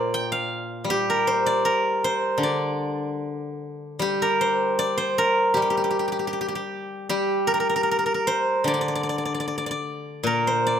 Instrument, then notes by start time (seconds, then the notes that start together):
guzheng
Already playing: A#2 A#4 C5 D5 F5
0.14 G5
0.32 F5
0.84 G3
0.90 G4
1.10 A#4
1.27 C5
1.46 D5
1.65 A#4
2.04 C5
2.38 D3
2.43 D5
3.99 G3 G4
4.22 A#4
4.41 C5
4.79 D5
4.98 C5
5.18 A#4
5.54 G3 G4
5.62 G4
5.70 G4
5.77 G4
5.84 G4
5.91 G4
5.99 G4
6.08 G4
6.12 G4
6.19 G4
6.27 G4
6.33 G4
6.41 G4
6.48 G4
6.55 G4
7.09 G3 G4
7.47 A#4
7.54 A#4
7.60 A#4
7.69 A#4
7.76 A#4
7.83 A#4
7.91 A#4
7.99 A#4
8.06 A#4
8.14 A#4
8.27 C5
8.64 D3 D5
8.74 D5
8.81 D5
8.88 D5
8.95 D5
9.03 D5
9.09 D5
9.18 D5
9.25 D5
9.34 D5
9.40 D5
9.48 D5
9.58 D5
9.66 D5
9.71 D5
10.23 A#2 A#4
10.47 C5
10.67 D5